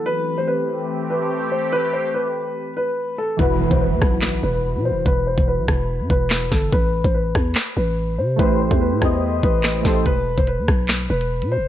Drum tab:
HH |----------------|----------------|----------------|----------------|
CP |----------------|----------------|--------x-------|------------x---|
SD |----------------|----------------|------r-o-------|------r-----o-o-|
BD |----------------|----------------|o--o--o---------|o--o--o---o---o-|

HH |----------------|----------------|x--xx-x-x--x-x--|
CP |--------x-------|------------x---|--------x-------|
SD |------r-o-------|------r-----o-o-|------r-o-------|
BD |o--o--o---------|o--o--o---o---o-|o--o--o---------|